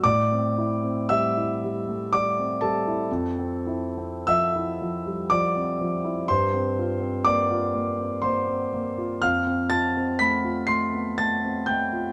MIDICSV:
0, 0, Header, 1, 2, 480
1, 0, Start_track
1, 0, Tempo, 1041667
1, 15, Time_signature, 3, 2, 24, 8
1, 495, Tempo, 1001669
1, 1455, Tempo, 1153846
1, 1935, Tempo, 1048951
1, 2415, Tempo, 983607
1, 5755, End_track
2, 0, Start_track
2, 0, Title_t, "Grand piano"
2, 0, Program_c, 0, 0
2, 0, Control_c, 0, 64, 127
2, 16, Note_on_c, 0, 86, 97
2, 22, Control_c, 0, 64, 0
2, 22, Note_on_c, 0, 45, 59
2, 24, Note_on_c, 0, 74, 76
2, 85, Control_c, 0, 64, 127
2, 147, Note_on_c, 0, 60, 43
2, 268, Note_on_c, 0, 64, 47
2, 334, Note_off_c, 0, 60, 0
2, 385, Note_on_c, 0, 60, 45
2, 454, Note_off_c, 0, 64, 0
2, 481, Note_off_c, 0, 74, 0
2, 496, Note_off_c, 0, 86, 0
2, 503, Note_on_c, 0, 88, 98
2, 507, Note_on_c, 0, 76, 83
2, 509, Note_on_c, 0, 55, 48
2, 574, Note_off_c, 0, 60, 0
2, 638, Note_on_c, 0, 64, 43
2, 699, Note_off_c, 0, 55, 0
2, 767, Note_on_c, 0, 55, 45
2, 822, Note_off_c, 0, 64, 0
2, 883, Note_on_c, 0, 57, 40
2, 945, Note_off_c, 0, 55, 0
2, 967, Note_off_c, 0, 76, 0
2, 984, Note_off_c, 0, 88, 0
2, 991, Note_off_c, 0, 57, 0
2, 999, Note_on_c, 0, 86, 91
2, 1002, Note_on_c, 0, 55, 46
2, 1005, Note_on_c, 0, 74, 65
2, 1124, Note_on_c, 0, 60, 41
2, 1180, Note_off_c, 0, 55, 0
2, 1213, Note_off_c, 0, 74, 0
2, 1225, Note_off_c, 0, 86, 0
2, 1230, Note_on_c, 0, 81, 85
2, 1235, Note_on_c, 0, 69, 65
2, 1239, Note_on_c, 0, 55, 44
2, 1300, Note_off_c, 0, 60, 0
2, 1358, Note_on_c, 0, 64, 49
2, 1419, Note_off_c, 0, 55, 0
2, 1441, Note_off_c, 0, 45, 0
2, 1464, Control_c, 0, 64, 0
2, 1466, Note_off_c, 0, 64, 0
2, 1468, Note_on_c, 0, 41, 58
2, 1520, Control_c, 0, 64, 127
2, 1584, Note_on_c, 0, 60, 46
2, 1701, Note_on_c, 0, 64, 48
2, 1773, Note_off_c, 0, 60, 0
2, 1828, Note_on_c, 0, 60, 44
2, 1894, Note_off_c, 0, 64, 0
2, 1927, Note_off_c, 0, 69, 0
2, 1943, Note_off_c, 0, 81, 0
2, 1952, Note_on_c, 0, 88, 104
2, 1957, Note_on_c, 0, 53, 47
2, 1959, Note_on_c, 0, 76, 82
2, 2020, Note_off_c, 0, 60, 0
2, 2084, Note_on_c, 0, 64, 45
2, 2147, Note_off_c, 0, 53, 0
2, 2202, Note_on_c, 0, 53, 43
2, 2264, Note_off_c, 0, 64, 0
2, 2316, Note_on_c, 0, 55, 41
2, 2379, Note_off_c, 0, 53, 0
2, 2409, Note_off_c, 0, 76, 0
2, 2423, Note_on_c, 0, 86, 92
2, 2424, Note_off_c, 0, 55, 0
2, 2424, Note_off_c, 0, 88, 0
2, 2430, Note_on_c, 0, 74, 74
2, 2431, Note_on_c, 0, 53, 44
2, 2552, Note_on_c, 0, 60, 47
2, 2619, Note_off_c, 0, 53, 0
2, 2674, Note_on_c, 0, 53, 42
2, 2740, Note_off_c, 0, 60, 0
2, 2787, Note_on_c, 0, 64, 48
2, 2860, Note_off_c, 0, 53, 0
2, 2888, Note_off_c, 0, 74, 0
2, 2889, Note_off_c, 0, 41, 0
2, 2904, Note_off_c, 0, 64, 0
2, 2904, Note_on_c, 0, 84, 94
2, 2905, Note_off_c, 0, 86, 0
2, 2907, Note_on_c, 0, 72, 76
2, 2909, Control_c, 0, 64, 0
2, 2912, Note_on_c, 0, 43, 58
2, 2982, Control_c, 0, 64, 127
2, 3029, Note_on_c, 0, 60, 46
2, 3151, Note_on_c, 0, 65, 48
2, 3213, Note_off_c, 0, 60, 0
2, 3257, Note_on_c, 0, 60, 47
2, 3333, Note_off_c, 0, 65, 0
2, 3357, Note_off_c, 0, 72, 0
2, 3374, Note_on_c, 0, 86, 99
2, 3375, Note_off_c, 0, 84, 0
2, 3383, Note_on_c, 0, 74, 74
2, 3385, Note_on_c, 0, 58, 46
2, 3445, Note_off_c, 0, 60, 0
2, 3503, Note_on_c, 0, 65, 46
2, 3568, Note_off_c, 0, 58, 0
2, 3620, Note_on_c, 0, 58, 43
2, 3685, Note_off_c, 0, 65, 0
2, 3731, Note_on_c, 0, 60, 38
2, 3803, Note_off_c, 0, 58, 0
2, 3829, Note_off_c, 0, 74, 0
2, 3844, Note_off_c, 0, 86, 0
2, 3847, Note_off_c, 0, 60, 0
2, 3848, Note_on_c, 0, 84, 78
2, 3854, Note_on_c, 0, 58, 45
2, 3857, Note_on_c, 0, 72, 62
2, 3973, Note_on_c, 0, 60, 43
2, 4040, Note_off_c, 0, 58, 0
2, 4073, Note_off_c, 0, 72, 0
2, 4085, Note_off_c, 0, 84, 0
2, 4098, Note_on_c, 0, 58, 43
2, 4161, Note_off_c, 0, 60, 0
2, 4220, Note_on_c, 0, 65, 50
2, 4284, Note_off_c, 0, 58, 0
2, 4311, Note_off_c, 0, 43, 0
2, 4332, Control_c, 0, 64, 0
2, 4333, Note_off_c, 0, 65, 0
2, 4336, Note_on_c, 0, 89, 99
2, 4341, Note_on_c, 0, 77, 73
2, 4345, Note_on_c, 0, 41, 56
2, 4424, Control_c, 0, 64, 127
2, 4458, Note_on_c, 0, 60, 46
2, 4558, Note_off_c, 0, 77, 0
2, 4570, Note_on_c, 0, 93, 96
2, 4571, Note_off_c, 0, 89, 0
2, 4571, Note_on_c, 0, 65, 48
2, 4572, Note_on_c, 0, 81, 75
2, 4644, Note_off_c, 0, 60, 0
2, 4703, Note_on_c, 0, 60, 42
2, 4761, Note_off_c, 0, 65, 0
2, 4793, Note_off_c, 0, 81, 0
2, 4808, Note_off_c, 0, 93, 0
2, 4811, Note_on_c, 0, 95, 101
2, 4818, Note_on_c, 0, 57, 46
2, 4820, Note_on_c, 0, 83, 75
2, 4887, Note_off_c, 0, 60, 0
2, 4935, Note_on_c, 0, 65, 43
2, 5005, Note_off_c, 0, 57, 0
2, 5038, Note_off_c, 0, 83, 0
2, 5043, Note_on_c, 0, 96, 98
2, 5050, Note_off_c, 0, 95, 0
2, 5051, Note_on_c, 0, 84, 75
2, 5053, Note_on_c, 0, 57, 42
2, 5124, Note_off_c, 0, 65, 0
2, 5172, Note_on_c, 0, 59, 34
2, 5245, Note_off_c, 0, 57, 0
2, 5275, Note_off_c, 0, 84, 0
2, 5289, Note_off_c, 0, 96, 0
2, 5292, Note_off_c, 0, 59, 0
2, 5293, Note_on_c, 0, 93, 91
2, 5296, Note_on_c, 0, 81, 61
2, 5299, Note_on_c, 0, 57, 40
2, 5416, Note_on_c, 0, 60, 39
2, 5490, Note_off_c, 0, 57, 0
2, 5520, Note_off_c, 0, 81, 0
2, 5529, Note_on_c, 0, 91, 83
2, 5536, Note_off_c, 0, 93, 0
2, 5537, Note_on_c, 0, 79, 67
2, 5540, Note_on_c, 0, 57, 38
2, 5610, Note_off_c, 0, 60, 0
2, 5658, Note_on_c, 0, 65, 42
2, 5731, Note_off_c, 0, 57, 0
2, 5755, Note_off_c, 0, 41, 0
2, 5755, Note_off_c, 0, 65, 0
2, 5755, Note_off_c, 0, 79, 0
2, 5755, Note_off_c, 0, 91, 0
2, 5755, End_track
0, 0, End_of_file